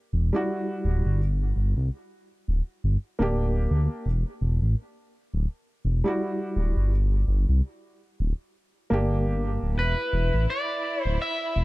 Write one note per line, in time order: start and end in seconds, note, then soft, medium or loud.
0.13 0.31 E1 medium
0.33 1.18 G3 medium
0.33 1.19 E4 medium
0.33 1.19 F#4 medium
0.85 1.03 D1 medium
1.05 1.53 G1 medium
1.56 1.74 G1 medium
1.77 1.90 C2 medium
2.48 2.61 D1 loud
2.84 2.97 G1 medium
3.19 3.67 D1 medium
3.19 4.04 A#3 medium
3.19 4.04 D4 medium
3.19 4.05 G4 medium
3.71 3.89 D2 loud
4.06 4.24 E1 medium
4.41 4.60 E1 medium
4.62 4.75 A1 medium
5.34 5.47 D1 loud
5.85 6.03 E1 medium
6.04 6.89 G3 medium
6.04 6.90 E4 medium
6.04 6.91 F#4 medium
6.56 6.74 D1 medium
6.77 7.24 G1 medium
7.28 7.46 G1 loud
7.49 7.62 C2 medium
8.20 8.33 D1 loud
8.90 9.58 G1 medium
8.90 9.75 A#3 medium
8.90 9.76 D4 medium
8.90 9.77 G4 medium
9.63 9.75 D1 medium
9.77 9.95 E1 medium
9.77 11.64 E4 medium
9.77 10.45 B4 medium
10.13 10.31 E1 medium
10.34 10.47 A1 medium
10.50 11.04 D5 medium
11.04 11.18 D1 loud
11.04 11.21 C5 medium
11.22 11.64 E5 loud
11.56 11.64 E1 medium